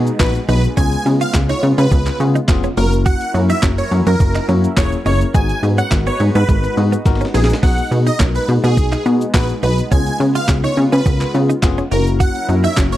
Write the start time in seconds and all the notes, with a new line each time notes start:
Already playing: B2 G#3 B3 D#4 F#4 G#4, downlifter
0.07 closed hi-hat, shaker
0.19 A#1 B3 D#4 F#4 B4, kick, snare, clap, closed hi-hat, shaker
0.35 closed hi-hat, shaker
0.48 B1 B3 D#4 F#4 G#4 B4, open hi-hat, shaker
0.64 closed hi-hat, shaker
0.77 C#2 C#3 B3 C#4 F4 G#4 G#5, kick, closed hi-hat, shaker
0.92 closed hi-hat, shaker
1.05 C#3 B3 C#4 F4 G#4, muted clean electric guitar stroke, open hi-hat, shaker
1.21 F4 F5, closed hi-hat, shaker
1.34 C#2 B3 C#4 F4 G#4, kick, snare, clap, closed hi-hat, shaker
1.49 D#4 C#5, closed hi-hat, shaker
1.63 C#3 B3 C#4 F4 G#4, muted clean electric guitar stroke, open hi-hat, shaker
1.78 C#3 C#4 B4, closed hi-hat, shaker
1.91 C#2 B3 C#4 F4 G#4, kick, closed hi-hat, shaker
2.06 muted clean electric guitar stroke, clap, closed hi-hat, shaker
2.20 C#3 B3 C#4 F4 G#4, open hi-hat, shaker
2.35 D#4, closed hi-hat, shaker
2.48 F1 B3 C#4 F4 G#4, muted clean electric guitar stroke, kick, snare, clap, closed hi-hat, shaker
2.64 C#4, closed hi-hat, shaker
2.77 F#1 F#3 A#3 C#4 E4 F#4 A#4, open hi-hat, shaker
2.93 closed hi-hat, shaker
3.06 F#4 F#5, kick, closed hi-hat, shaker
3.21 closed hi-hat, shaker
3.34 F#2 A#3 C#4 E4 F#4, muted clean electric guitar stroke, open hi-hat, shaker
3.50 D#4 E5, closed hi-hat, shaker
3.62 F#1 A#3 C#4 E4 F#4, kick, snare, clap, closed hi-hat, shaker
3.78 C#5, muted clean electric guitar stroke, closed hi-hat, shaker
3.91 F#2 A#3 C#4 E4 F#4, open hi-hat, shaker
4.07 F#2 A#3 A#4, closed hi-hat, shaker
4.20 F#1 A#3 C#4 E4 F#4, muted clean electric guitar stroke, kick, closed hi-hat, shaker
4.35 D#4, clap, closed hi-hat, shaker
4.48 F#2 A#3 C#4 E4 F#4, open hi-hat, shaker
4.64 closed hi-hat, shaker
4.77 E1 A#3 C#4 E4 G#4 C#5, kick, snare, clap, closed hi-hat, shaker
4.92 closed hi-hat, shaker
5.06 F#1 A#3 C#4 D#4 E4 G#4 C#5, open hi-hat, shaker
5.21 closed hi-hat, shaker
5.34 G#1 G#3 B3 D#4 F#4 G#4 B4 G#5, kick, closed hi-hat, shaker
5.49 closed hi-hat, shaker
5.63 G#2 B3 D#4 F#4 G#4, muted clean electric guitar stroke, open hi-hat, shaker
5.78 C#4 F#5, closed hi-hat, shaker
5.91 G#1 B3 D#4 F#4 A#4, kick, snare, clap, closed hi-hat, shaker
6.06 B3 C#5, closed hi-hat, shaker
6.20 G#2 B3 D#4 F#4 G#4, muted clean electric guitar stroke, open hi-hat, shaker
6.35 G#2 B3 B4, closed hi-hat, shaker
6.48 G#1 G#3 B3 D#4 F#4 A#4, kick, closed hi-hat, shaker
6.64 muted clean electric guitar stroke, closed hi-hat, shaker
6.77 G#2 B3 D#4 F#4 G#4, open hi-hat, shaker
6.92 B3, closed hi-hat, shaker
7.06 G#1 B3 D#4 F#4 A#4, muted clean electric guitar stroke, kick, snare, closed hi-hat, shaker
7.15 snare
7.21 C#4, closed hi-hat, shaker
7.25 snare
7.34 A#1 B3 D#4 F#4 G#4 B4, snare, open hi-hat, shaker
7.44 snare
7.50 snare, closed hi-hat, shaker
7.63 B1 G#3 B3 D#4 F#4 G#4 F#5, kick, crash
7.78 closed hi-hat, shaker
7.91 B2 B3 D#4 F#4 G#4, muted clean electric guitar stroke, open hi-hat, shaker
8.07 D#4 D#5, closed hi-hat, shaker
8.19 B1 B3 C#4 D#4 F#4 A#4, kick, snare, clap, closed hi-hat, shaker
8.35 B4, muted clean electric guitar stroke, closed hi-hat, shaker
8.48 B2 B3 D#4 F#4 G#4, open hi-hat, shaker
8.64 B2 B3 G#4, closed hi-hat, shaker
8.77 B1 B3 D#4 F#4 G#4, muted clean electric guitar stroke, kick, closed hi-hat, shaker
8.92 D#4, clap, closed hi-hat, shaker
9.06 B2 B3 D#4 F#4 G#4, open hi-hat, shaker
9.21 closed hi-hat, shaker
9.34 A#1 B3 D#4 F#4 G#4 B4, kick, snare, clap, closed hi-hat, shaker
9.49 closed hi-hat, shaker
9.63 B1 B3 D#4 F#4 B4, open hi-hat, shaker
9.78 closed hi-hat, shaker
9.91 C#2 C#3 B3 C#4 F4 G#4 G#5, kick, closed hi-hat, shaker
10.06 closed hi-hat, shaker
10.20 C#3 B3 C#4 F4 G#4, muted clean electric guitar stroke, open hi-hat, shaker
10.35 F4 F5, closed hi-hat, shaker
10.48 C#2 B3 C#4 F4 G#4, kick, snare, clap, closed hi-hat, shaker
10.64 D#4 C#5, closed hi-hat, shaker
10.77 C#3 B3 C#4 F4 G#4, muted clean electric guitar stroke, open hi-hat, shaker
10.92 C#3 C#4 B4, closed hi-hat, shaker
11.06 C#2 B3 C#4 F4 A#4, kick, closed hi-hat, shaker
11.21 muted clean electric guitar stroke, clap, closed hi-hat, shaker
11.34 C#3 B3 C#4 F4 G#4, open hi-hat, shaker
11.49 D#4, closed hi-hat, shaker
11.62 F1 B3 C#4 F4 G#4, muted clean electric guitar stroke, kick, snare, clap, closed hi-hat, shaker
11.78 C#4, closed hi-hat, shaker
11.91 F#1 F#3 A#3 C#4 E4 F#4 A#4, open hi-hat, shaker
12.07 closed hi-hat, shaker
12.20 F#4 F#5, kick, closed hi-hat, shaker
12.35 closed hi-hat, shaker
12.48 F#2 A#3 C#4 E4 F#4, muted clean electric guitar stroke, open hi-hat, shaker
12.64 D#4 E5, closed hi-hat, shaker
12.77 F#1 A#3 C#4 E4 F#4, kick, snare, clap, closed hi-hat, shaker
12.92 C#5, muted clean electric guitar stroke, closed hi-hat, shaker